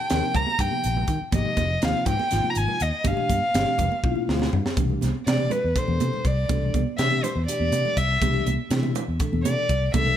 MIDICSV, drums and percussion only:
0, 0, Header, 1, 2, 480
1, 0, Start_track
1, 0, Key_signature, 0, "major"
1, 0, Tempo, 492207
1, 1295, Time_signature, 7, 3, 24, 8
1, 9917, End_track
2, 0, Start_track
2, 0, Title_t, "Drums"
2, 94, Note_on_c, 9, 42, 82
2, 103, Note_on_c, 9, 38, 106
2, 192, Note_off_c, 9, 42, 0
2, 201, Note_off_c, 9, 38, 0
2, 334, Note_on_c, 9, 64, 95
2, 337, Note_on_c, 9, 36, 80
2, 344, Note_on_c, 9, 42, 66
2, 432, Note_off_c, 9, 64, 0
2, 435, Note_off_c, 9, 36, 0
2, 442, Note_off_c, 9, 42, 0
2, 455, Note_on_c, 9, 62, 79
2, 553, Note_off_c, 9, 62, 0
2, 574, Note_on_c, 9, 36, 98
2, 574, Note_on_c, 9, 42, 78
2, 671, Note_off_c, 9, 42, 0
2, 672, Note_off_c, 9, 36, 0
2, 693, Note_on_c, 9, 63, 74
2, 790, Note_off_c, 9, 63, 0
2, 816, Note_on_c, 9, 42, 61
2, 913, Note_off_c, 9, 42, 0
2, 943, Note_on_c, 9, 64, 76
2, 1040, Note_off_c, 9, 64, 0
2, 1048, Note_on_c, 9, 42, 58
2, 1052, Note_on_c, 9, 36, 68
2, 1146, Note_off_c, 9, 42, 0
2, 1149, Note_off_c, 9, 36, 0
2, 1290, Note_on_c, 9, 42, 81
2, 1292, Note_on_c, 9, 36, 104
2, 1293, Note_on_c, 9, 62, 91
2, 1388, Note_off_c, 9, 42, 0
2, 1389, Note_off_c, 9, 36, 0
2, 1390, Note_off_c, 9, 62, 0
2, 1417, Note_on_c, 9, 64, 70
2, 1514, Note_off_c, 9, 64, 0
2, 1528, Note_on_c, 9, 42, 52
2, 1531, Note_on_c, 9, 36, 72
2, 1533, Note_on_c, 9, 63, 85
2, 1626, Note_off_c, 9, 42, 0
2, 1629, Note_off_c, 9, 36, 0
2, 1630, Note_off_c, 9, 63, 0
2, 1773, Note_on_c, 9, 42, 72
2, 1782, Note_on_c, 9, 38, 95
2, 1871, Note_off_c, 9, 42, 0
2, 1879, Note_off_c, 9, 38, 0
2, 2009, Note_on_c, 9, 42, 62
2, 2011, Note_on_c, 9, 36, 81
2, 2012, Note_on_c, 9, 64, 85
2, 2106, Note_off_c, 9, 42, 0
2, 2109, Note_off_c, 9, 36, 0
2, 2109, Note_off_c, 9, 64, 0
2, 2139, Note_on_c, 9, 62, 66
2, 2236, Note_off_c, 9, 62, 0
2, 2249, Note_on_c, 9, 42, 77
2, 2258, Note_on_c, 9, 38, 33
2, 2347, Note_off_c, 9, 42, 0
2, 2356, Note_off_c, 9, 38, 0
2, 2382, Note_on_c, 9, 63, 63
2, 2479, Note_off_c, 9, 63, 0
2, 2488, Note_on_c, 9, 42, 60
2, 2585, Note_off_c, 9, 42, 0
2, 2612, Note_on_c, 9, 64, 59
2, 2709, Note_off_c, 9, 64, 0
2, 2730, Note_on_c, 9, 42, 62
2, 2828, Note_off_c, 9, 42, 0
2, 2967, Note_on_c, 9, 62, 74
2, 2970, Note_on_c, 9, 42, 77
2, 2972, Note_on_c, 9, 36, 107
2, 3065, Note_off_c, 9, 62, 0
2, 3067, Note_off_c, 9, 42, 0
2, 3069, Note_off_c, 9, 36, 0
2, 3090, Note_on_c, 9, 64, 58
2, 3188, Note_off_c, 9, 64, 0
2, 3207, Note_on_c, 9, 63, 73
2, 3207, Note_on_c, 9, 64, 23
2, 3213, Note_on_c, 9, 36, 73
2, 3218, Note_on_c, 9, 42, 62
2, 3305, Note_off_c, 9, 63, 0
2, 3305, Note_off_c, 9, 64, 0
2, 3311, Note_off_c, 9, 36, 0
2, 3315, Note_off_c, 9, 42, 0
2, 3330, Note_on_c, 9, 64, 25
2, 3428, Note_off_c, 9, 64, 0
2, 3456, Note_on_c, 9, 42, 85
2, 3465, Note_on_c, 9, 38, 103
2, 3554, Note_off_c, 9, 42, 0
2, 3563, Note_off_c, 9, 38, 0
2, 3687, Note_on_c, 9, 64, 78
2, 3693, Note_on_c, 9, 42, 65
2, 3695, Note_on_c, 9, 36, 75
2, 3784, Note_off_c, 9, 64, 0
2, 3791, Note_off_c, 9, 42, 0
2, 3792, Note_off_c, 9, 36, 0
2, 3818, Note_on_c, 9, 62, 62
2, 3916, Note_off_c, 9, 62, 0
2, 3936, Note_on_c, 9, 36, 101
2, 4034, Note_off_c, 9, 36, 0
2, 4053, Note_on_c, 9, 63, 66
2, 4150, Note_off_c, 9, 63, 0
2, 4170, Note_on_c, 9, 64, 27
2, 4184, Note_on_c, 9, 38, 74
2, 4267, Note_off_c, 9, 64, 0
2, 4282, Note_off_c, 9, 38, 0
2, 4286, Note_on_c, 9, 64, 62
2, 4310, Note_on_c, 9, 38, 68
2, 4384, Note_off_c, 9, 64, 0
2, 4407, Note_off_c, 9, 38, 0
2, 4418, Note_on_c, 9, 43, 78
2, 4515, Note_off_c, 9, 43, 0
2, 4542, Note_on_c, 9, 38, 75
2, 4640, Note_off_c, 9, 38, 0
2, 4650, Note_on_c, 9, 42, 70
2, 4651, Note_on_c, 9, 62, 82
2, 4652, Note_on_c, 9, 36, 97
2, 4748, Note_off_c, 9, 42, 0
2, 4749, Note_off_c, 9, 62, 0
2, 4750, Note_off_c, 9, 36, 0
2, 4775, Note_on_c, 9, 64, 59
2, 4873, Note_off_c, 9, 64, 0
2, 4889, Note_on_c, 9, 63, 82
2, 4897, Note_on_c, 9, 42, 53
2, 4906, Note_on_c, 9, 38, 30
2, 4986, Note_off_c, 9, 63, 0
2, 4995, Note_off_c, 9, 42, 0
2, 5004, Note_off_c, 9, 38, 0
2, 5140, Note_on_c, 9, 42, 70
2, 5149, Note_on_c, 9, 38, 98
2, 5237, Note_off_c, 9, 42, 0
2, 5243, Note_on_c, 9, 62, 63
2, 5243, Note_on_c, 9, 64, 26
2, 5246, Note_off_c, 9, 38, 0
2, 5340, Note_off_c, 9, 62, 0
2, 5340, Note_off_c, 9, 64, 0
2, 5366, Note_on_c, 9, 64, 78
2, 5375, Note_on_c, 9, 42, 51
2, 5463, Note_off_c, 9, 64, 0
2, 5472, Note_off_c, 9, 42, 0
2, 5485, Note_on_c, 9, 64, 23
2, 5583, Note_off_c, 9, 64, 0
2, 5613, Note_on_c, 9, 42, 73
2, 5614, Note_on_c, 9, 36, 88
2, 5711, Note_off_c, 9, 36, 0
2, 5711, Note_off_c, 9, 42, 0
2, 5733, Note_on_c, 9, 63, 62
2, 5830, Note_off_c, 9, 63, 0
2, 5854, Note_on_c, 9, 42, 56
2, 5858, Note_on_c, 9, 62, 80
2, 5951, Note_off_c, 9, 42, 0
2, 5955, Note_off_c, 9, 62, 0
2, 5981, Note_on_c, 9, 64, 60
2, 6078, Note_off_c, 9, 64, 0
2, 6092, Note_on_c, 9, 42, 49
2, 6093, Note_on_c, 9, 36, 71
2, 6190, Note_off_c, 9, 36, 0
2, 6190, Note_off_c, 9, 42, 0
2, 6331, Note_on_c, 9, 42, 73
2, 6332, Note_on_c, 9, 62, 83
2, 6334, Note_on_c, 9, 36, 97
2, 6429, Note_off_c, 9, 42, 0
2, 6429, Note_off_c, 9, 62, 0
2, 6431, Note_off_c, 9, 36, 0
2, 6457, Note_on_c, 9, 64, 54
2, 6555, Note_off_c, 9, 64, 0
2, 6574, Note_on_c, 9, 36, 69
2, 6575, Note_on_c, 9, 42, 53
2, 6582, Note_on_c, 9, 63, 76
2, 6671, Note_off_c, 9, 36, 0
2, 6673, Note_off_c, 9, 42, 0
2, 6679, Note_off_c, 9, 63, 0
2, 6810, Note_on_c, 9, 42, 79
2, 6819, Note_on_c, 9, 38, 102
2, 6908, Note_off_c, 9, 42, 0
2, 6917, Note_off_c, 9, 38, 0
2, 6934, Note_on_c, 9, 62, 60
2, 6934, Note_on_c, 9, 64, 25
2, 7031, Note_off_c, 9, 62, 0
2, 7031, Note_off_c, 9, 64, 0
2, 7058, Note_on_c, 9, 64, 76
2, 7060, Note_on_c, 9, 42, 60
2, 7156, Note_off_c, 9, 64, 0
2, 7157, Note_off_c, 9, 42, 0
2, 7182, Note_on_c, 9, 64, 24
2, 7279, Note_off_c, 9, 64, 0
2, 7298, Note_on_c, 9, 42, 81
2, 7396, Note_off_c, 9, 42, 0
2, 7420, Note_on_c, 9, 63, 55
2, 7517, Note_off_c, 9, 63, 0
2, 7530, Note_on_c, 9, 42, 60
2, 7536, Note_on_c, 9, 62, 80
2, 7628, Note_off_c, 9, 42, 0
2, 7633, Note_off_c, 9, 62, 0
2, 7657, Note_on_c, 9, 64, 62
2, 7754, Note_off_c, 9, 64, 0
2, 7771, Note_on_c, 9, 42, 62
2, 7772, Note_on_c, 9, 36, 70
2, 7869, Note_off_c, 9, 42, 0
2, 7870, Note_off_c, 9, 36, 0
2, 8012, Note_on_c, 9, 36, 96
2, 8012, Note_on_c, 9, 42, 83
2, 8019, Note_on_c, 9, 62, 80
2, 8109, Note_off_c, 9, 42, 0
2, 8110, Note_off_c, 9, 36, 0
2, 8116, Note_off_c, 9, 62, 0
2, 8131, Note_on_c, 9, 64, 57
2, 8229, Note_off_c, 9, 64, 0
2, 8253, Note_on_c, 9, 63, 79
2, 8255, Note_on_c, 9, 42, 59
2, 8351, Note_off_c, 9, 63, 0
2, 8352, Note_off_c, 9, 42, 0
2, 8489, Note_on_c, 9, 42, 78
2, 8498, Note_on_c, 9, 38, 99
2, 8587, Note_off_c, 9, 42, 0
2, 8595, Note_off_c, 9, 38, 0
2, 8611, Note_on_c, 9, 62, 67
2, 8611, Note_on_c, 9, 64, 26
2, 8709, Note_off_c, 9, 62, 0
2, 8709, Note_off_c, 9, 64, 0
2, 8731, Note_on_c, 9, 42, 61
2, 8733, Note_on_c, 9, 64, 88
2, 8828, Note_off_c, 9, 42, 0
2, 8831, Note_off_c, 9, 64, 0
2, 8858, Note_on_c, 9, 64, 27
2, 8956, Note_off_c, 9, 64, 0
2, 8968, Note_on_c, 9, 42, 74
2, 8972, Note_on_c, 9, 36, 98
2, 9066, Note_off_c, 9, 42, 0
2, 9070, Note_off_c, 9, 36, 0
2, 9096, Note_on_c, 9, 63, 68
2, 9194, Note_off_c, 9, 63, 0
2, 9217, Note_on_c, 9, 42, 55
2, 9219, Note_on_c, 9, 62, 94
2, 9315, Note_off_c, 9, 42, 0
2, 9316, Note_off_c, 9, 62, 0
2, 9451, Note_on_c, 9, 42, 52
2, 9454, Note_on_c, 9, 36, 68
2, 9549, Note_off_c, 9, 42, 0
2, 9551, Note_off_c, 9, 36, 0
2, 9690, Note_on_c, 9, 42, 75
2, 9694, Note_on_c, 9, 36, 103
2, 9694, Note_on_c, 9, 62, 106
2, 9788, Note_off_c, 9, 42, 0
2, 9791, Note_off_c, 9, 62, 0
2, 9792, Note_off_c, 9, 36, 0
2, 9810, Note_on_c, 9, 64, 71
2, 9907, Note_off_c, 9, 64, 0
2, 9917, End_track
0, 0, End_of_file